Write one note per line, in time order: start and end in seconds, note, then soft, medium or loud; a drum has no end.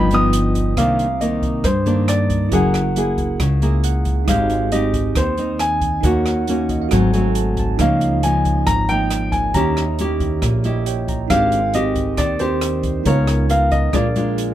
0.00 0.73 G1 loud
0.00 0.75 G2 medium
0.00 0.74 F4 medium
0.00 0.75 B4 soft
0.00 0.76 D#5 medium
0.00 0.77 G5 medium
0.00 0.13 B5 medium
0.11 0.74 F3 medium
0.11 0.74 B3 medium
0.11 0.75 D#4 medium
0.11 0.27 D#6 loud
0.11 closed hi-hat soft
0.33 closed hi-hat medium
0.55 kick soft
0.55 closed hi-hat soft
0.77 1.61 C2 medium
0.77 1.63 C3 medium
0.77 1.06 D#3 medium
0.77 1.06 A#3 medium
0.77 1.06 D4 medium
0.77 2.49 C5 soft
0.77 1.18 F5 medium
0.77 2.51 A#5 soft
0.77 2.50 D6 soft
0.77 kick medium
0.77 cross-stick medium
0.77 closed hi-hat soft
0.99 closed hi-hat soft
1.21 1.65 D#3 medium
1.21 1.65 A#3 medium
1.21 1.66 D#5 medium
1.21 closed hi-hat soft
1.42 kick soft
1.42 closed hi-hat soft
1.64 2.50 G2 soft
1.64 2.48 G2 loud
1.64 2.10 C5 medium
1.64 kick medium
1.64 cross-stick medium
1.64 closed hi-hat soft
1.86 2.49 D#3 medium
1.86 2.49 A#3 medium
1.86 2.49 D4 medium
1.86 closed hi-hat soft
2.08 2.50 D5 medium
2.08 cross-stick medium
2.08 closed hi-hat soft
2.30 kick soft
2.30 closed hi-hat soft
2.49 3.36 F#1 medium
2.49 3.38 F#3 medium
2.49 2.80 A#3 medium
2.49 4.23 E4 soft
2.49 2.81 E4 medium
2.49 4.24 G#4 soft
2.49 2.81 G#4 medium
2.49 kick medium
2.49 closed hi-hat soft
2.53 4.25 A#4 soft
2.53 3.37 F#5 medium
2.53 3.83 F#5 soft
2.74 cross-stick medium
2.74 closed hi-hat soft
2.96 3.40 A#3 medium
2.96 3.40 E4 medium
2.96 3.41 G#4 medium
2.96 closed hi-hat soft
3.18 kick soft
3.18 closed hi-hat soft
3.40 4.24 C#2 medium
3.40 4.26 C#3 medium
3.40 kick medium
3.40 cross-stick medium
3.40 closed hi-hat soft
3.62 4.25 A#3 medium
3.62 4.25 E4 medium
3.62 4.25 G#4 medium
3.62 3.83 A#5 soft
3.62 closed hi-hat soft
3.84 4.25 F#5 medium
3.84 closed hi-hat soft
4.05 kick medium
4.05 closed hi-hat soft
4.25 5.12 G#1 medium
4.25 5.14 G#3 medium
4.25 4.69 C4 medium
4.25 5.98 D#4 soft
4.25 4.74 F5 medium
4.25 kick medium
4.25 cross-stick medium
4.25 closed hi-hat soft
4.29 4.69 D#4 medium
4.29 4.69 G4 medium
4.29 6.00 C5 soft
4.29 6.01 G6 medium
4.50 closed hi-hat soft
4.72 5.34 C4 soft
4.72 5.35 D#4 medium
4.72 5.35 G4 medium
4.72 5.17 D#5 medium
4.72 closed hi-hat soft
4.94 kick soft
4.94 closed hi-hat soft
5.15 6.00 D#2 medium
5.15 6.02 D#3 medium
5.15 5.57 C5 medium
5.15 kick medium
5.15 cross-stick medium
5.15 closed hi-hat soft
5.37 6.00 C4 medium
5.37 6.01 D#4 soft
5.37 closed hi-hat soft
5.59 6.05 G#5 loud
5.59 cross-stick medium
5.59 closed hi-hat soft
5.81 kick medium
5.81 closed hi-hat soft
6.01 6.87 D#2 loud
6.01 6.90 D#3 medium
6.01 6.44 A#3 medium
6.01 6.88 D#4 soft
6.01 6.89 A#4 soft
6.01 6.90 C#5 soft
6.01 6.88 F#5 medium
6.01 kick medium
6.01 closed hi-hat soft
6.05 6.45 C#4 medium
6.05 6.45 F#4 medium
6.05 6.91 F#5 medium
6.26 cross-stick medium
6.26 closed hi-hat soft
6.47 6.90 A#3 soft
6.47 6.90 C#4 medium
6.47 6.91 F#4 medium
6.47 closed hi-hat soft
6.69 6.80 D#5 soft
6.69 kick soft
6.69 closed hi-hat soft
6.82 6.91 F5 soft
6.89 7.75 G#1 medium
6.89 7.77 G#2 medium
6.89 7.10 F#3 medium
6.89 7.76 F#4 medium
6.89 7.77 A4 medium
6.89 7.12 F#5 medium
6.89 kick medium
6.89 cross-stick medium
6.89 closed hi-hat soft
6.93 7.11 A3 medium
6.93 7.11 C4 medium
6.93 7.78 C5 medium
6.93 7.12 G#5 medium
7.13 7.76 F#3 medium
7.13 7.76 A3 medium
7.13 7.76 C4 medium
7.13 7.34 G#5 medium
7.13 closed hi-hat soft
7.35 7.56 A5 medium
7.35 closed hi-hat soft
7.57 7.79 A5 soft
7.57 kick medium
7.57 closed hi-hat soft
7.77 8.63 C#2 medium
7.77 8.65 C#3 medium
7.77 8.20 F3 medium
7.77 8.20 A#3 medium
7.77 9.50 D#4 soft
7.77 8.20 D#4 medium
7.77 9.51 A#4 soft
7.77 8.21 F5 medium
7.77 kick medium
7.77 cross-stick medium
7.77 closed hi-hat soft
7.81 9.52 C#5 soft
7.81 9.53 F5 soft
8.01 closed hi-hat soft
8.23 8.86 F3 medium
8.23 8.86 A#3 medium
8.23 8.87 D#4 medium
8.23 8.68 G#5 medium
8.23 closed hi-hat soft
8.45 kick soft
8.45 closed hi-hat soft
8.67 9.51 G#1 medium
8.67 9.53 G#2 medium
8.67 8.89 A#5 loud
8.67 kick medium
8.67 cross-stick medium
8.67 closed hi-hat soft
8.89 9.52 F3 soft
8.89 9.52 A#3 soft
8.89 9.52 D#4 medium
8.89 9.34 G5 loud
8.89 closed hi-hat soft
9.10 cross-stick medium
9.10 closed hi-hat soft
9.32 9.55 G#5 medium
9.32 kick medium
9.32 closed hi-hat soft
9.54 10.39 D#2 medium
9.54 10.41 D#3 medium
9.54 9.83 C#4 medium
9.54 9.84 E4 medium
9.54 10.83 G4 soft
9.54 9.84 G4 medium
9.54 10.84 C#5 soft
9.54 10.85 E5 medium
9.54 10.38 A#5 medium
9.54 kick medium
9.54 closed hi-hat soft
9.77 cross-stick medium
9.77 closed hi-hat soft
9.99 10.62 C#4 medium
9.99 10.62 E4 medium
9.99 10.62 G4 medium
9.99 closed hi-hat soft
10.20 kick medium
10.20 closed hi-hat soft
10.42 11.26 A#1 loud
10.42 11.28 A#2 soft
10.42 kick medium
10.42 cross-stick medium
10.42 closed hi-hat soft
10.64 11.27 C#4 soft
10.64 11.27 E4 medium
10.64 11.27 G4 medium
10.64 10.85 D#5 medium
10.64 closed hi-hat soft
10.86 11.30 G4 soft
10.86 11.31 C#5 soft
10.86 11.31 G5 medium
10.86 closed hi-hat soft
11.08 11.29 A#5 medium
11.08 kick soft
11.08 closed hi-hat soft
11.28 12.14 G#1 medium
11.28 12.16 G#3 medium
11.28 11.59 C4 medium
11.28 11.59 D4 medium
11.28 12.37 D#4 soft
11.28 12.38 A#4 soft
11.28 11.75 F5 loud
11.28 kick medium
11.28 cross-stick medium
11.28 closed hi-hat soft
11.32 11.59 G4 medium
11.32 12.39 C5 soft
11.32 12.40 G5 medium
11.52 closed hi-hat soft
11.74 12.37 C4 soft
11.74 12.37 G4 medium
11.74 12.20 D#5 medium
11.74 closed hi-hat soft
11.96 kick medium
11.96 closed hi-hat soft
12.17 13.02 D#2 medium
12.17 13.04 D#3 medium
12.17 12.39 D5 medium
12.17 kick medium
12.17 cross-stick medium
12.17 closed hi-hat soft
12.39 13.03 C4 medium
12.39 13.06 D4 soft
12.39 13.03 D4 medium
12.39 13.03 G4 medium
12.39 13.04 A#4 soft
12.39 13.08 C5 medium
12.39 13.06 C5 soft
12.39 13.07 D5 soft
12.39 closed hi-hat soft
12.61 cross-stick medium
12.61 closed hi-hat soft
12.83 kick medium
12.83 closed hi-hat soft
13.04 13.90 C#2 loud
13.04 13.91 C#3 medium
13.04 13.46 B3 medium
13.04 13.91 D#4 soft
13.04 13.46 F4 medium
13.04 13.92 A#4 soft
13.04 13.47 A#4 medium
13.04 13.52 C#5 medium
13.04 kick medium
13.04 closed hi-hat soft
13.09 13.94 F5 medium
13.27 cross-stick medium
13.27 closed hi-hat soft
13.49 13.92 B3 medium
13.49 13.92 F4 medium
13.49 13.92 A#4 medium
13.49 13.73 F5 medium
13.49 closed hi-hat soft
13.71 13.94 D#5 medium
13.71 kick medium
13.71 closed hi-hat soft
13.92 14.54 A#1 medium
13.92 14.54 A#2 soft
13.92 14.06 G#3 soft
13.92 14.54 D4 soft
13.92 14.06 D4 medium
13.92 14.07 F4 medium
13.92 14.54 G#4 soft
13.92 14.54 D5 medium
13.92 kick medium
13.92 cross-stick medium
13.92 closed hi-hat soft
13.96 14.54 A#4 soft
13.96 14.54 F5 medium
14.16 14.54 G#3 medium
14.16 14.54 D4 medium
14.16 14.54 F4 medium
14.16 closed hi-hat soft
14.38 closed hi-hat soft